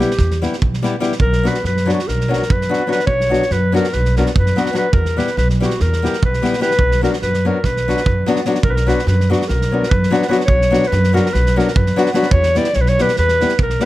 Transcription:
Already playing: clarinet G4
0.00 nylon-string guitar G3 B3 E4 G4, snare
0.11 snare
0.18 upright bass E2, kick, snare
0.31 snare
0.42 nylon-string guitar G3 B3 E4 G4, snare
0.53 snare
0.62 upright bass B1, kick
0.74 snare
0.82 nylon-string guitar G3 B3 E4 G4, snare
1.00 nylon-string guitar G3 B3 E4 G4, snare
1.12 snare
1.20 upright bass B1, clarinet A#4, kick
1.33 snare
1.43 nylon-string guitar F#3 B3 D4 F#4, snare
1.47 clarinet B4
1.54 snare
1.64 upright bass F#2, clarinet B4, snare
1.77 snare
1.86 nylon-string guitar F#3 B3 D4 F#4, snare
1.92 clarinet F#4
1.99 snare
2.08 upright bass B1, clarinet A#4, snare
2.21 snare
2.28 nylon-string guitar F#3 B3 D4 F#4
2.33 snare
2.42 snare
2.50 upright bass F#2, clarinet B4, kick
2.61 snare
2.69 nylon-string guitar F#3 B3 D4 F#4
2.73 snare
2.87 nylon-string guitar F#3 B3 D4 F#4
2.92 clarinet B4, snare
3.00 snare
3.07 upright bass B1, clarinet C#5, kick
3.21 snare
3.29 nylon-string guitar F#3 B3 D4 F#4
3.33 snare
3.42 snare
3.51 upright bass F#2, clarinet B4, snare
3.72 nylon-string guitar F#3 B3 D4 F#4, clarinet A#4, snare
3.84 snare
3.92 upright bass B1, clarinet B4, snare
4.05 snare
4.16 nylon-string guitar F#3 B3 D4 F#4, clarinet A#4, snare
4.26 snare
4.36 upright bass F#2, clarinet B4, kick
4.46 snare
4.56 nylon-string guitar F#3 B3 D4 F#4, snare
4.66 snare
4.73 nylon-string guitar F#3 B3 D4 F#4, snare
4.78 clarinet B4
4.93 upright bass E2, clarinet A#4, kick
5.05 snare
5.17 nylon-string guitar G3 B3 E4 G4, clarinet B4, snare
5.27 snare
5.37 upright bass B1, clarinet B4, snare
5.50 snare
5.60 nylon-string guitar G3 B3 E4 G4, clarinet F#4, snare
5.70 snare
5.80 upright bass E2, clarinet A#4, snare
5.93 snare
6.02 nylon-string guitar G3 B3 E4 G4, snare
6.13 snare
6.23 upright bass B1, clarinet B4, kick
6.33 snare
6.42 nylon-string guitar G3 B3 E4 G4, snare
6.53 snare
6.60 nylon-string guitar G3 B3 E4 G4, clarinet B4, snare
6.71 snare
6.79 upright bass B1, kick
6.91 snare
7.01 nylon-string guitar F#3 B3 D4 F#4, clarinet A#4, snare
7.13 snare
7.22 upright bass F#2, clarinet B4, snare
7.34 snare
7.45 nylon-string guitar F#3 B3 D4 F#4, clarinet A#4
7.64 upright bass B1, clarinet B4, kick, snare
7.76 snare
7.88 nylon-string guitar F#3 B3 D4 F#4, snare
7.97 snare
8.06 upright bass F#2, kick
8.26 nylon-string guitar F#3 B3 D4 F#4, snare
8.36 snare
8.45 nylon-string guitar F#3 B3 D4 F#4, snare
8.55 snare
8.63 upright bass B1, clarinet A#4, kick
8.70 clarinet A#4 B4
8.77 snare
8.87 nylon-string guitar F#3 B3 D4 F#4, clarinet B4, snare
8.99 snare
9.07 upright bass F#2, clarinet B4, snare
9.20 snare
9.30 nylon-string guitar F#3 B3 D4 F#4, clarinet F#4, snare
9.41 snare
9.48 upright bass B1, clarinet A#4, snare
9.61 snare
9.71 nylon-string guitar F#3 B3 D4 F#4
9.83 snare
9.89 upright bass F#2, clarinet B4, kick
10.03 snare
10.11 nylon-string guitar F#3 B3 D4 F#4, snare
10.22 snare
10.29 nylon-string guitar F#3 B3 D4 F#4, clarinet B4, snare
10.40 snare
10.45 clarinet C#5, kick
10.49 upright bass B1
10.62 snare
10.71 nylon-string guitar F#3 B3 D4 F#4, snare
10.83 snare
10.88 clarinet B4
10.92 upright bass F#2, snare
11.04 snare
11.13 nylon-string guitar F#3 B3 D4 F#4, clarinet A#4, snare
11.26 snare
11.33 upright bass B1, clarinet B4, snare
11.46 snare
11.56 nylon-string guitar F#3 B3 D4 F#4, clarinet A#4, snare
11.68 snare
11.76 upright bass F#2, clarinet B4, kick
11.86 snare
11.96 nylon-string guitar F#3 B3 D4 F#4, snare
12.06 snare
12.14 nylon-string guitar F#3 B3 D4 F#4, clarinet B4, snare
12.23 snare
12.31 upright bass E2, clarinet C#5, kick
12.43 snare
12.55 nylon-string guitar G3 B3 E4 G4, clarinet D5, snare
12.64 snare
12.73 upright bass B1, clarinet C#5, snare
12.81 clarinet B4
12.86 clarinet C#5, snare
12.99 nylon-string guitar G3 B3 E4 G4, clarinet B4, snare
13.08 snare
13.16 upright bass E2, clarinet B4, snare
13.28 snare
13.41 nylon-string guitar G3 B3 E4 G4, snare
13.49 snare
13.59 upright bass B1, clarinet A#4, kick
13.70 snare
13.80 nylon-string guitar G3 B3 E4 G4, snare

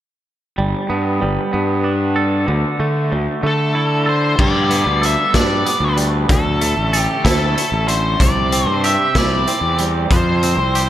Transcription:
0.58 fingered electric bass G1, clean electric guitar G3
0.90 fingered electric bass G2, clean electric guitar B3
1.21 fingered electric bass G1, clean electric guitar G3
1.53 fingered electric bass G2, clean electric guitar B3
1.84 clean electric guitar D4
2.16 clean electric guitar A4
2.47 fingered electric bass D2, clean electric guitar D3
2.79 fingered electric bass D3, clean electric guitar A3
3.12 fingered electric bass D2, clean electric guitar D3
3.43 fingered electric bass D3, clean electric guitar A3, lead electric guitar A4
3.75 clean electric guitar E4
4.06 clean electric guitar A4, lead electric guitar C5
4.39 fingered electric bass G2, clean electric guitar G3, lead electric guitar D5, kick, crash
4.71 clean electric guitar B3, closed hi-hat
4.86 fingered electric bass D2
5.02 clean electric guitar A4, lead electric guitar E5, closed hi-hat
5.34 fingered electric bass G2, clean electric guitar D4, lead electric guitar D5, kick, snare, closed hi-hat
5.66 clean electric guitar B3, closed hi-hat
5.80 fingered electric bass D2
5.97 clean electric guitar G3, closed hi-hat
6.29 fingered electric bass D2, clean electric guitar D3, lead electric guitar A4, kick, closed hi-hat
6.61 clean electric guitar A3, closed hi-hat
6.77 fingered electric bass A1
6.93 clean electric guitar A4, closed hi-hat
7.00 lead electric guitar G4
7.24 fingered electric bass D2, clean electric guitar E4, lead electric guitar A4, kick, snare, closed hi-hat
7.56 clean electric guitar A3, closed hi-hat
7.72 fingered electric bass A1
7.88 clean electric guitar D3, lead electric guitar C5, closed hi-hat
8.20 fingered electric bass C2, clean electric guitar C3, lead electric guitar D5, kick, closed hi-hat
8.52 clean electric guitar C4, closed hi-hat
8.66 fingered electric bass G2, lead electric guitar C5
8.84 clean electric guitar G4, lead electric guitar E5, closed hi-hat
9.15 fingered electric bass C2, clean electric guitar E4, lead electric guitar D5, kick, snare, closed hi-hat
9.47 clean electric guitar C4, closed hi-hat
9.61 fingered electric bass E2
9.79 clean electric guitar G3, closed hi-hat
10.11 fingered electric bass F2, clean electric guitar F3, lead electric guitar C5, kick, closed hi-hat
10.43 clean electric guitar C4, closed hi-hat
10.57 fingered electric bass C2
10.75 clean electric guitar G4, closed hi-hat

